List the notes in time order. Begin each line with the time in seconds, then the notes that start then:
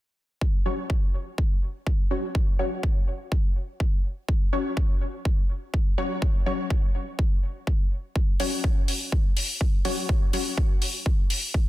0.41 kick
0.66 F#3 C#4 F#4 C#5
0.90 kick
1.38 kick
1.87 kick
2.11 F#3 C#4 F#4 C#5
2.35 kick
2.59 F#3 C#4 F#4 C#5
2.83 kick
3.32 kick
3.80 kick
4.28 kick
4.53 F#3 C#4 F#4 C#5
4.77 kick
5.25 kick
5.74 kick
5.98 F#3 C#4 F#4 C#5
6.22 kick
6.46 F#3 C#4 F#4 C#5
6.70 kick
7.19 kick
7.67 kick
8.16 kick
8.40 F#3 C#4 F#4 C#5, open hi-hat
8.64 kick
8.88 open hi-hat
9.12 kick
9.37 open hi-hat
9.61 kick
9.85 F#3 C#4 F#4 C#5, open hi-hat
10.09 kick
10.33 F#3 C#4 F#4 C#5, open hi-hat
10.57 kick
10.82 open hi-hat
11.06 kick
11.30 open hi-hat
11.54 kick